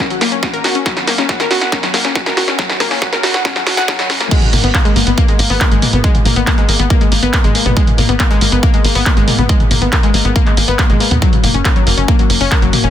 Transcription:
0.10 F#3, closed hi-hat
0.21 A#3, snare, open hi-hat
0.32 C#4, closed hi-hat
0.43 F#4, kick, snare, closed hi-hat
0.54 A#4, closed hi-hat
0.64 F#4, snare, open hi-hat
0.75 C#4, closed hi-hat
0.86 F#3, kick, snare, closed hi-hat
0.97 snare, closed hi-hat
1.07 A#3, snare, open hi-hat
1.18 C#4, snare, closed hi-hat, mid tom
1.29 F#4, kick, snare, closed hi-hat
1.40 A#4, snare, closed hi-hat, mid tom
1.51 F#4, snare, open hi-hat
1.61 F#5, snare, closed hi-hat
1.72 C#4, kick, snare, closed hi-hat
1.83 F#3, snare, closed hi-hat
1.94 A#3, snare, open hi-hat
2.05 C#4, snare, closed hi-hat
2.15 F#4, kick, snare, closed hi-hat
2.26 A#4, snare, closed hi-hat
2.37 F#4, snare, open hi-hat, mid tom
2.48 C#4, snare, closed hi-hat
2.59 F#3, kick, snare, closed hi-hat
2.69 snare, closed hi-hat
2.80 A#3, kick, snare, open hi-hat
2.91 C#4, snare, open hi-hat, mid tom
3.02 F#4, kick, snare, closed hi-hat
3.13 A#4, snare, closed hi-hat, mid tom
3.23 F#4, snare, open hi-hat
3.34 F#5, snare, closed hi-hat
3.45 C#4, kick, snare, closed hi-hat
3.56 F#3, snare, closed hi-hat
3.67 F#4, snare, open hi-hat
3.77 F#5, snare, closed hi-hat
3.88 F#3, kick, snare, closed hi-hat
3.99 F#3, snare, closed hi-hat
4.10 C#4, snare, open hi-hat
4.21 A#3, snare, closed hi-hat
4.31 G#3, kick, closed hi-hat, crash
4.42 closed hi-hat, mid tom
4.53 G#1 A#3, open hi-hat, mid tom
4.64 G#1 B3, closed hi-hat
4.74 A#3, kick, clap, closed hi-hat
4.85 G#3, closed hi-hat
4.96 G#1 A#3, open hi-hat
5.07 G#1 B3, closed hi-hat
5.18 A#3, kick, closed hi-hat
5.28 G#3, closed hi-hat
5.39 G#1 A#3, open hi-hat
5.50 G#1 B3, open hi-hat
5.61 A#3, kick, clap, closed hi-hat
5.72 G#1 G#3, closed hi-hat
5.82 A#3, open hi-hat, mid tom
5.93 G#1 B3, closed hi-hat, mid tom
6.04 G#3, kick, closed hi-hat
6.15 closed hi-hat, mid tom
6.25 G#1 A#3, open hi-hat, mid tom
6.36 G#1 B3, closed hi-hat
6.47 A#3, kick, clap, closed hi-hat
6.58 G#3, closed hi-hat
6.69 G#1 A#3, open hi-hat
6.79 G#1 B3, closed hi-hat
6.90 A#3, kick, closed hi-hat
7.01 G#3, closed hi-hat
7.12 G#1 A#3, open hi-hat
7.23 G#1 B3, closed hi-hat
7.33 A#3, kick, clap, closed hi-hat
7.44 G#1 G#3, closed hi-hat, mid tom
7.55 A#3, open hi-hat
7.66 G#1 B3, closed hi-hat, mid tom
7.77 G#3, kick, closed hi-hat
7.87 closed hi-hat, mid tom
7.98 G#1 A#3, open hi-hat, mid tom
8.09 G#1 B3, closed hi-hat
8.20 A#3, kick, clap, closed hi-hat
8.31 G#3, closed hi-hat
8.41 G#1 A#3, open hi-hat
8.52 G#1 B3, closed hi-hat
8.63 A#3, kick, closed hi-hat
8.74 G#3, closed hi-hat
8.85 G#1 A#3, open hi-hat
8.95 G#1 B3, open hi-hat
9.06 A#3, kick, clap
9.17 G#1 G#3, closed hi-hat
9.28 A#3, open hi-hat, mid tom
9.38 G#1 B3, closed hi-hat, mid tom
9.49 G#3, kick, closed hi-hat
9.60 closed hi-hat, mid tom
9.71 G#1 A#3, open hi-hat, mid tom
9.82 G#1 B3, closed hi-hat
9.92 A#3, kick, clap, closed hi-hat
10.03 G#3, closed hi-hat
10.14 G#1 A#3, open hi-hat
10.25 G#1 B3, closed hi-hat
10.36 A#3, kick, closed hi-hat
10.46 G#3, clap, closed hi-hat
10.57 G#1 A#3, open hi-hat
10.68 G#1 B3, closed hi-hat
10.79 A#3, kick, clap, closed hi-hat
10.90 G#1 G#3, closed hi-hat, mid tom
11.00 A#3, open hi-hat
11.11 D#2 B3, closed hi-hat, mid tom
11.22 F#3, kick, closed hi-hat
11.33 closed hi-hat, mid tom
11.44 F#1 A#3, open hi-hat, mid tom
11.54 F#1 C#4, closed hi-hat
11.65 A#3, kick, clap, closed hi-hat
11.76 F#3, closed hi-hat
11.87 F#1 A#3, open hi-hat
11.98 F#1 C#4, closed hi-hat
12.08 A#3, kick, closed hi-hat
12.19 F#3, closed hi-hat
12.30 F#1 A#3, open hi-hat
12.41 F#1 C#4, open hi-hat
12.51 A#3, kick, clap, closed hi-hat
12.62 F#1 F#3, closed hi-hat
12.73 A#3, open hi-hat, mid tom
12.84 F#1 C#4, closed hi-hat, mid tom

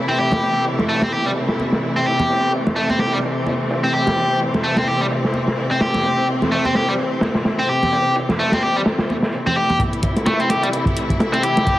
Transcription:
Already playing: C3 E3 A3 E4
0.09 C4
0.18 G4, closed hi-hat
0.31 snare, high conga, low conga
0.42 closed hi-hat
0.65 closed hi-hat
0.79 snare, low conga
0.89 A3, open hi-hat
1.02 C4, snare, high conga
1.12 G4, closed hi-hat
1.25 G3, closed hi-hat
1.36 closed hi-hat
1.48 snare
1.58 closed hi-hat, high conga
1.72 snare
1.82 closed hi-hat
1.95 C4, closed hi-hat
2.06 G4, closed hi-hat
2.19 high conga, low conga
2.29 C4, closed hi-hat
2.52 closed hi-hat
2.67 snare, low conga
2.76 A3, closed hi-hat
2.89 C4, high conga
2.99 G4, snare, closed hi-hat
3.13 G3
3.23 closed hi-hat
3.46 closed hi-hat, high conga
3.60 closed hi-hat
3.70 closed hi-hat
3.84 C4
3.93 G4, closed hi-hat
4.07 snare, high conga, low conga
4.17 closed hi-hat
4.40 closed hi-hat
4.54 snare, closed hi-hat, low conga
4.64 A3, open hi-hat
4.76 C4, snare, high conga
4.87 G4, closed hi-hat
5.01 G3, closed hi-hat
5.10 closed hi-hat
5.24 snare, closed hi-hat
5.33 closed hi-hat, high conga
5.47 snare, closed hi-hat
5.57 closed hi-hat
5.71 C4, closed hi-hat
5.80 G4, snare, open hi-hat
5.94 snare, high conga, low conga
6.04 closed hi-hat
6.28 closed hi-hat
6.42 snare, closed hi-hat, low conga
6.51 A3, closed hi-hat
6.65 C4, high conga
6.75 G4, snare, closed hi-hat
6.89 G3
6.99 closed hi-hat
7.12 closed hi-hat
7.21 snare, closed hi-hat, high conga
7.35 snare, closed hi-hat
7.45 snare, closed hi-hat
7.59 C4
7.69 G4, closed hi-hat
7.83 high conga, low conga
7.92 closed hi-hat
8.16 closed hi-hat
8.29 snare, closed hi-hat, low conga
8.38 A3, closed hi-hat, open hi-hat
8.52 C4, snare, high conga
8.62 G4, closed hi-hat
8.76 G3, closed hi-hat
8.85 snare, closed hi-hat
8.99 snare, closed hi-hat
9.09 closed hi-hat, high conga
9.22 snare, closed hi-hat
9.32 closed hi-hat
9.47 C4, closed hi-hat, low conga
9.56 G4, closed hi-hat
9.70 closed hi-hat, high conga, low conga
9.79 C3 E3 A3 E4, kick, closed hi-hat
9.93 closed hi-hat
10.03 kick, closed hi-hat
10.16 snare, closed hi-hat
10.26 A3, snare, closed hi-hat
10.40 C4, closed hi-hat
10.50 G4, snare, closed hi-hat
10.63 G3, closed hi-hat
10.73 closed hi-hat
10.86 kick, closed hi-hat
10.97 closed hi-hat
11.10 kick, closed hi-hat
11.19 snare, closed hi-hat
11.33 C4, closed hi-hat
11.43 G4, closed hi-hat
11.57 snare, closed hi-hat
11.66 kick, closed hi-hat

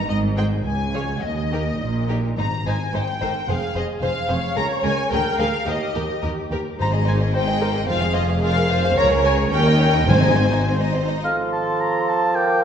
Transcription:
0.08 G#1 G#2 D#5
0.37 G#3 D#4 G#4 C5 G5
0.64 C#2 G#5
0.94 F3 F4 G#4 C#5
1.22 D#2 D#5
1.51 A#3 D#4 G4 A#4
1.80 A#1 A#2
2.09 A#3 D#4 G4 A#4
2.37 G#1 G#2 D#4 C5 A#5
2.66 G#1 G#2 D#4 C5 G#5
2.93 G#1 G#2 D#4 C5 G5
3.21 G#1 G#2 D#4 A#4 C5
3.48 F1 F2 G#4 C5 F5
3.75 F1 F2 G#4 C5 D#5
4.02 F1 F2 G#4 C5 F5
4.28 F1 F2 G#4 C5 C#5
4.56 C#2 G#4 A#4 A#5
4.83 C#2 G#4 A#4 G#5
5.10 D2 G#4 A#4 G5
5.38 D2 G#4 A#4 F5
5.66 D#2 G4 A#4 D#5
5.94 D#2 G4 A#4
6.22 D#2 G4 A#4
6.50 D#2 G4 A#4
6.78 G#1 G#2 D#4 C5 A#5
6.92 G#4 D#5
7.07 D#4 C5 G#5
7.21 G#4 D#5
7.33 D#4 C5 G5
7.47 G#4 D#5
7.61 D#4 A#4 C5
7.74 G#4 D#5
7.88 F1 F2 F4 G#4 C5 F5
8.01 G#4 F5
8.14 F4 C5 D#5
8.28 G#4 F5
8.42 F4 A#4 C5 F5
8.56 G#4 F5
8.70 F4 C5
8.82 G#4 F5
8.95 C#2 A#4 C#5 A#5
9.10 G#4 A#4
9.24 A#4 C#5 G#5
9.36 G#4 A#4
9.51 D#2 C#4 A#4 C#5 G5
9.65 D#4 D#5
9.79 C#4 C#5
9.94 D#4 D#5
10.07 G#1 G#2 C4 C5 G#5
10.21 D#4 D#5
10.37 C4 C5
10.52 D#4 D#5
10.66 C4 C5
10.80 D#4 D#5
10.95 C4 C5
11.09 D#4 D#5
11.23 F3 A4 F5 C6
11.52 A5
11.81 A#5
12.08 A5
12.35 A#4 G5 D6

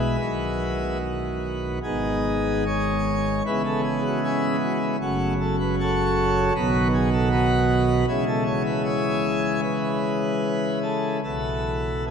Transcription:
Already playing: B1 B2 E3 G#3 B3 E4 G#4 B4
0.20 B1 B2 D#3 F#3 B3
1.83 G#1 G#2 D#3 G#3 B3 D#4 G#4
2.66 G#4 C#5
3.45 C#3 E3 G#3 B3 E4 G#4 B4
3.65 A4
3.84 G#4
4.04 F#4
4.24 C#4 E4 G#4
4.62 F#4
4.82 E4
5.01 F#1 F#2 C#3 F#3 A3 C#4 F#4
5.40 A4
5.59 B4
5.80 F#4 A4 C#5
6.55 B1 B2 D#3 F#3 B3 D#4 F#4 B4
6.93 G#4
7.12 A4
7.31 D#4 F#4 B4
8.08 C#3 E3 G#3 C#4 E4 G#4
8.27 A4
8.46 C#5
8.66 B4
8.85 E4 G#4 C#5
9.63 B4
10.83 A4
11.24 B1 B2 E3 B3 E4 A4
12.07 B3 E4 G#4

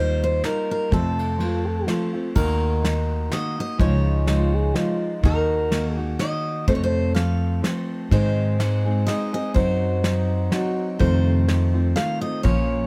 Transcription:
Already playing: D#2 G3 A#3 D#4 F4 C5
0.24 C5
0.42 G3 A#3 D#4 F4 A#4, snare, ride
0.71 A#4
0.90 F2 C3 F3 A3 C4 F4 A4, kick, ride
1.19 ride
1.38 F3 A3 C4 F4, ride
1.66 A4
1.87 F3 A3 C4 F4, snare, ride
2.14 F3 A3 C4 F4
2.35 D#2 D#3 A#3 D#4 F#4 A#4, kick, crash
2.82 D#3 A#3 D#4 F#4, snare, ride
3.30 D#3 A#3 D#4 F#4 D#5, snare, ride
3.57 A#3 D#4 F#4 D#5
3.78 C#2 C#3 F3 G#3 D#4 F4 C#5, kick, ride
4.26 F3 G#3 D#4 F4, snare, ride
4.54 G#4
4.74 F3 G#3 D#4 F4, snare, ride
5.23 D#2 D#3 A#3 D#4 F#4 A#4, kick, ride
5.70 D#3 A#3 D#4 F#4, snare, ride
5.94 F#4 G#4
5.99 A#3 D#4
6.19 D#3 A#3 D#4 F#4 D#5, snare, ride
6.67 F2 C3 F3 A3 C4 A4 C5, kick, ride
6.75 C#5
6.83 C5
7.15 F3 A3 C4 A4 F5, snare, ride
7.62 F3 A3 C4 A4, snare, ride
8.11 G#2 D#3 G#3 C4 D#4 G#4 C5, kick, ride
8.58 G#3 C4 D#4 G#4, snare, ride
8.85 G#3 C4 D#4 G#4
9.06 G#3 C4 D#4 G#4 D#5, snare, ride
9.33 G#3 C4 D#4 G#4 D#5
9.54 F#2 F#3 C4 D#4 F#4 C5, kick, ride
10.03 F#3 C4 D#4 F#4, snare, ride
10.51 F#3 C4 D#4 F#4, snare, ride
10.99 F2 C3 D#3 A3 C4 F4 C5, kick, ride
11.48 D#3 A3 C4 F4, snare, ride
11.74 D#3 A3 C4 F4
11.95 D#3 A3 C4 F4 F5, snare, ride
12.21 D#3 A3 C4 F4 D#5
12.43 A#1 A#2 F3 A#3 C#4 F4 C#5, kick, ride

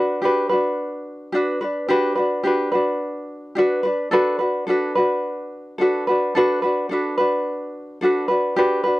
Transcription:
Already playing: D4 F#4 B4
0.22 D4 F#4 G4 B4
0.49 D4 F#4 B4
1.32 D4 F#4 G4 B4
1.61 D4 F#4 B4
1.88 D4 F#4 G4 B4
2.15 D4 F#4 B4
2.43 D4 F#4 G4 B4
2.72 D4 F#4 B4
3.55 D4 F#4 G4 B4
3.83 D4 B4
4.11 D4 F#4 A4 B4
4.39 D4 F#4 B4
4.67 D4 F#4 A4 B4
4.95 D4 F#4 B4
5.78 D4 F#4 A4 B4
6.07 D4 F#4 B4
6.35 D4 F#4 A4 B4
6.62 D4 F#4 B4
6.89 D4 F#4 A4 B4
7.18 D4 F#4 B4
8.01 D4 F#4 A4 B4
8.28 D4 F#4 B4
8.56 D4 F#4 G4 B4
8.84 D4 F#4 B4

